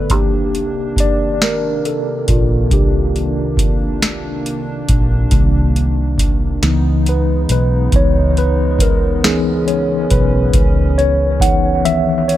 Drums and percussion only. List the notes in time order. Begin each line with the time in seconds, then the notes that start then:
0.10 kick, closed hi-hat
0.55 closed hi-hat
0.96 kick, closed hi-hat
1.42 snare, closed hi-hat
1.85 closed hi-hat
2.28 kick, closed hi-hat
2.71 kick, closed hi-hat
3.16 closed hi-hat
3.57 kick, closed hi-hat
4.02 snare, closed hi-hat
4.46 closed hi-hat
4.89 kick, closed hi-hat
5.31 kick, closed hi-hat
5.76 closed hi-hat
6.18 kick, closed hi-hat
6.63 snare, closed hi-hat
7.06 closed hi-hat
7.49 closed hi-hat
7.92 kick, closed hi-hat
8.37 closed hi-hat
8.79 kick, closed hi-hat
9.24 snare, closed hi-hat
9.68 closed hi-hat
10.10 kick, closed hi-hat
10.53 kick, closed hi-hat
10.99 closed hi-hat
11.40 kick, closed hi-hat
11.85 closed hi-hat
12.29 closed hi-hat